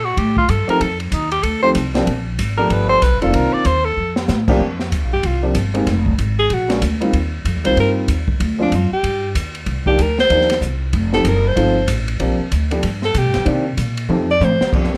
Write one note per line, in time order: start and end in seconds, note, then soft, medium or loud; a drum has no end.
0.00 0.16 A#2 medium
0.05 0.19 F#4 medium
0.17 0.48 A2 medium
0.17 0.37 G4 medium
0.17 kick soft
0.17 ride medium
0.37 0.51 F4 loud
0.37 kick medium
0.49 0.67 G2 loud
0.49 0.69 A4 medium
0.49 kick soft
0.49 hi-hat pedal soft
0.49 ride medium
0.67 0.79 F3 medium
0.67 0.79 A3 medium
0.67 0.79 C4 medium
0.67 0.79 D#4 medium
0.67 0.79 G4 medium
0.67 0.83 A#4 loud
0.67 muted upright bass stroke soft
0.67 ride soft
0.80 1.11 F2 medium
0.80 1.00 A4 loud
0.80 kick soft
0.80 ride medium
1.00 1.14 C4 soft
1.00 ride medium
1.12 1.43 D#2 loud
1.12 1.31 D#4 loud
1.12 kick soft
1.12 hi-hat pedal medium
1.12 ride medium
1.31 1.44 G4 loud
1.31 ride medium
1.43 1.74 D2 medium
1.43 1.62 A4 medium
1.43 kick soft
1.43 ride medium
1.62 1.74 F3 medium
1.62 1.74 A3 medium
1.62 1.74 C4 medium
1.62 1.74 D#4 medium
1.62 1.74 G4 medium
1.62 1.70 C5 loud
1.75 2.06 C2 loud
1.75 kick soft
1.75 hi-hat pedal medium
1.75 ride medium
1.94 2.05 F3 medium
1.94 2.06 A#3 medium
1.94 2.06 C4 medium
1.94 2.06 D4 medium
1.94 2.06 G4 medium
1.94 snare medium
1.94 ride soft
2.07 2.38 A#1 medium
2.07 kick soft
2.07 ride medium
2.38 2.69 G#1 medium
2.38 kick soft
2.38 hi-hat pedal medium
2.38 ride medium
2.58 2.99 F3 medium
2.58 2.99 A3 medium
2.58 3.00 B3 medium
2.58 3.00 D4 medium
2.58 3.00 G4 medium
2.58 2.73 A#4 loud
2.70 3.01 G1 medium
2.70 2.88 B4 medium
2.70 kick soft
2.70 ride medium
2.89 3.04 C5 loud
3.02 3.13 B1 medium
3.02 3.21 B4 loud
3.02 kick soft
3.02 hi-hat pedal medium
3.02 ride medium
3.13 3.23 G1 medium
3.21 3.33 F1 medium
3.21 3.63 D#3 medium
3.21 3.63 A#3 medium
3.21 3.63 C4 medium
3.21 3.63 D4 medium
3.21 3.63 F4 medium
3.21 3.37 A4 medium
3.21 ride soft
3.33 3.52 C2 loud
3.33 3.55 A#4 loud
3.33 kick soft
3.33 ride medium
3.53 3.68 D5 loud
3.53 muted upright bass stroke soft
3.65 3.96 D#2 loud
3.65 3.86 C5 loud
3.65 kick soft
3.65 hi-hat pedal soft
3.65 ride medium
3.85 4.16 A4 loud
3.97 4.27 F2 medium
4.16 snare medium
4.28 4.59 A2 loud
4.28 snare medium
4.28 hi-hat pedal medium
4.48 4.59 F3 medium
4.48 4.59 A#3 medium
4.48 4.59 C4 medium
4.48 4.60 D4 medium
4.48 4.59 G4 loud
4.48 kick medium
4.48 crash medium
4.60 4.91 F2 medium
4.60 kick soft
4.80 snare soft
4.91 5.03 D2 medium
4.91 kick soft
4.91 hi-hat pedal medium
4.91 ride medium
5.03 5.13 A#1 medium
5.13 5.22 G1 medium
5.13 5.28 G4 medium
5.23 5.54 C2 medium
5.23 5.44 F4 medium
5.23 kick soft
5.23 ride medium
5.43 5.54 F3 medium
5.43 5.54 A#3 medium
5.43 5.54 C4 medium
5.43 5.54 D4 medium
5.43 5.54 G4 medium
5.54 5.85 G1 loud
5.54 kick soft
5.54 hi-hat pedal medium
5.54 ride medium
5.74 5.85 G#3 medium
5.74 5.85 A#3 medium
5.74 5.85 C4 medium
5.74 5.85 D#4 medium
5.74 5.86 G4 medium
5.74 ride soft
5.87 6.17 F1 medium
5.87 kick soft
5.87 snare soft
5.87 ride medium
6.06 kick medium
6.18 6.49 G#1 medium
6.18 kick soft
6.18 hi-hat pedal medium
6.18 ride medium
6.39 6.55 G#4 loud
6.50 6.80 A#1 medium
6.50 6.71 F#4 medium
6.50 kick soft
6.50 ride medium
6.68 6.80 G#3 medium
6.68 6.80 A#3 medium
6.68 6.80 C#4 medium
6.68 6.80 D4 medium
6.68 6.80 F#4 medium
6.68 snare medium
6.68 ride soft
6.82 7.12 D2 medium
6.82 kick soft
6.82 hi-hat pedal medium
6.82 ride medium
7.00 7.12 G3 medium
7.00 7.12 A#3 medium
7.00 7.12 C4 medium
7.00 7.12 D#4 medium
7.00 7.12 F4 medium
7.00 ride soft
7.13 7.44 D#2 medium
7.13 kick soft
7.13 ride medium
7.45 7.56 F2 medium
7.45 kick soft
7.45 hi-hat pedal soft
7.45 ride medium
7.56 7.66 D#2 medium
7.64 7.76 C2 medium
7.64 8.05 G3 medium
7.64 8.06 A#3 medium
7.64 8.06 C4 medium
7.64 8.06 D#4 medium
7.64 8.06 F4 medium
7.64 7.76 C5 loud
7.64 ride medium
7.76 8.07 G2 medium
7.76 7.91 A#4 medium
7.76 kick soft
7.76 ride medium
8.08 8.39 D#2 medium
8.08 kick soft
8.08 hi-hat pedal medium
8.08 ride medium
8.28 kick medium
8.40 8.71 D2 loud
8.40 kick soft
8.40 ride medium
8.58 8.70 F3 medium
8.58 8.70 G#3 medium
8.58 8.70 C4 medium
8.58 8.70 D4 medium
8.58 8.77 D4 medium
8.58 8.71 F4 medium
8.71 8.90 F#2 medium
8.71 kick soft
8.71 hi-hat pedal soft
8.71 ride medium
8.76 8.93 F4 medium
8.91 9.33 G4 medium
8.91 muted upright bass stroke soft
9.03 9.34 G2 medium
9.03 kick soft
9.03 ride medium
9.35 9.65 D#2 medium
9.35 kick soft
9.35 hi-hat pedal medium
9.35 ride medium
9.55 ride soft
9.66 9.97 C2 medium
9.66 kick soft
9.66 ride medium
9.86 9.97 F3 medium
9.86 9.97 A#3 medium
9.86 9.97 D4 medium
9.86 9.97 D#4 medium
9.86 10.04 G4 medium
9.86 9.97 G4 medium
9.86 kick medium
9.98 10.29 D2 medium
9.98 kick soft
9.98 hi-hat pedal medium
9.98 ride medium
10.02 10.20 A#4 medium
10.18 10.59 C5 loud
10.18 snare medium
10.30 10.60 D#2 medium
10.30 10.47 F3 medium
10.30 10.47 A#3 medium
10.30 10.47 D4 medium
10.30 10.48 D#4 medium
10.30 10.48 G4 medium
10.30 kick soft
10.30 ride medium
10.41 snare soft
10.50 snare soft
10.50 ride medium
10.61 10.92 C2 loud
10.61 kick soft
10.61 hi-hat pedal medium
10.93 11.24 F1 loud
10.93 kick soft
10.93 ride medium
11.13 11.23 F3 medium
11.13 11.24 A3 medium
11.13 11.24 C4 medium
11.13 11.24 D#4 medium
11.13 11.24 G4 medium
11.13 11.29 A4 loud
11.13 snare soft
11.25 11.55 F#1 loud
11.25 11.49 A#4 medium
11.25 kick soft
11.25 hi-hat pedal medium
11.25 ride medium
11.47 11.89 C5 medium
11.56 11.87 G1 medium
11.56 11.74 F3 medium
11.56 11.74 A3 medium
11.56 11.74 C4 medium
11.56 11.74 D#4 medium
11.56 11.74 F4 medium
11.56 kick soft
11.56 ride medium
11.88 12.19 A1 loud
11.88 kick soft
11.88 hi-hat pedal medium
11.88 ride medium
12.08 ride medium
12.20 12.38 A#1 medium
12.20 12.37 F3 medium
12.20 12.37 A#3 medium
12.20 12.37 C4 medium
12.20 12.38 D4 medium
12.20 12.38 G4 medium
12.20 kick soft
12.20 ride medium
12.39 muted upright bass stroke soft
12.51 12.82 D2 loud
12.51 kick soft
12.51 hi-hat pedal medium
12.51 ride medium
12.71 12.82 F3 medium
12.71 12.82 A3 medium
12.71 12.82 B3 medium
12.71 12.82 D4 medium
12.71 12.82 G4 medium
12.71 ride medium
12.83 13.14 G2 medium
12.83 kick soft
12.83 ride medium
13.02 13.19 A4 medium
13.02 snare soft
13.14 13.25 B2 medium
13.14 13.48 G4 loud
13.14 kick soft
13.14 hi-hat pedal medium
13.14 ride medium
13.25 13.35 G2 medium
13.34 13.45 F2 medium
13.34 snare soft
13.34 ride soft
13.45 13.77 C3 medium
13.45 13.63 D#3 medium
13.45 13.63 A#3 medium
13.45 13.63 C4 medium
13.45 13.64 D4 medium
13.45 13.64 G4 medium
13.45 kick soft
13.45 ride medium
13.77 14.08 A#2 loud
13.77 kick soft
13.77 hi-hat pedal medium
13.77 ride medium
13.97 ride medium
14.09 14.40 F2 medium
14.09 14.27 F3 medium
14.09 14.27 A3 medium
14.09 14.27 C4 medium
14.09 14.27 D#4 medium
14.09 14.27 G4 medium
14.09 high tom medium
14.31 14.46 D5 loud
14.40 14.59 A2 loud
14.40 14.74 C5 medium
14.40 hi-hat pedal medium
14.40 high tom medium
14.61 muted upright bass stroke soft
14.61 snare medium
14.72 14.91 F2 medium
14.72 14.90 F3 medium
14.72 14.90 A#3 medium
14.72 14.91 C4 soft
14.72 14.91 D4 medium
14.72 14.91 G4 medium
14.72 kick medium
14.72 crash medium
14.84 snare soft
14.93 muted upright bass stroke soft